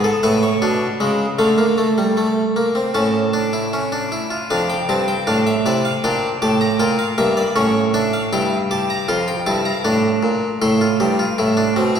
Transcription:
0.04 A4
0.23 A2 E4 B4
0.43 C#5
0.62 B2 D4
1.00 C#3 G#3
1.39 D3 A3 F5
1.58 A#3
1.78 A3
1.98 G3
2.17 A3
2.56 A#3
2.75 C4
2.94 A2 C#4 A5
3.33 D4
3.53 E4
3.73 C#4
3.92 D4
4.12 E4
4.31 F4
4.50 F2 D4 F5
4.70 G5
4.89 G2 C4 A5
5.08 G5
5.27 A2 D4 F5
5.47 E5
5.66 C3 E4 D5
5.85 F5
6.04 A#2 D4 G5
6.42 A2 G4 A5
6.61 A#5
6.80 A#2 F4 G5
6.99 F5
7.18 G2 A#3 E5
7.37 D5
7.56 A2 C#4 C#5
7.94 D4 E5
8.13 F5
8.33 G2 E4 G5
8.71 G4 A5
8.90 A#5
9.09 F2 F4 C6
9.28 G5
9.46 G2 E4 A5
9.65 A#5
9.85 A2 D4
10.23 A#2
10.62 A2 E4 C6
10.81 F4
11.00 G2 G4
11.19 F4
11.38 A2 E4
11.57 D4
11.76 B2 C4
11.96 E4

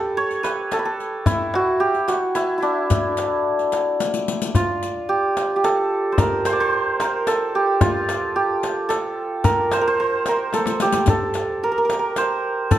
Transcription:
Already playing: G4 A4 B4 C#5
0.17 C#5
0.31 riq, tombak ka
0.43 B4, riq, tombak tek
0.71 A4, riq, tombak tek
0.79 B4
0.85 A4
1.00 riq
1.26 E4, riq, tombak dum
1.54 F#4, tombak tek
1.80 G4
1.94 riq
2.08 F#4, riq, tombak tek
2.35 E4, riq, tombak tek
2.58 E4
2.62 D4, riq
2.90 riq, tombak dum
3.17 riq, tombak tek
3.59 riq
3.72 riq, tombak tek
4.00 riq, tombak tek
4.14 riq
4.28 riq
4.42 riq
4.55 F4, riq, tombak dum
4.83 riq
5.09 G4, tombak ka
5.23 tombak ka
5.37 riq, tombak tek
5.56 G4
5.64 A4, riq, tombak tek
6.12 C5
6.18 A#4, riq, tombak dum
6.45 C5, riq, tombak tek
6.53 D5
6.60 C5
6.72 tombak ka
6.87 tombak ka
7.00 A#4, riq, tombak tek
7.27 A4, riq, tombak tek
7.55 G4
7.81 F4, riq, tombak dum
8.09 riq, tombak tek
8.36 G4, tombak ka
8.50 tombak ka
8.63 riq, tombak tek
8.89 A4, riq, tombak tek
9.44 A#4, riq, tombak dum
9.72 C5, riq, tombak tek
9.81 A#4
9.87 C5
9.99 C5, tombak ka
10.12 tombak ka
10.26 A#4, riq, tombak tek
10.53 A4, riq, tombak tek
10.66 riq, tombak ka
10.80 G4, riq, tombak tek
10.92 riq, tombak ka
11.06 A4, riq, tombak dum
11.34 riq, tombak tek
11.63 A#4, tombak ka
11.72 A#4
11.76 A#4, tombak ka
11.85 A#4
11.90 A#4, riq, tombak tek
11.99 A#4
12.16 C5, riq, tombak tek
12.71 A4, riq, tombak dum

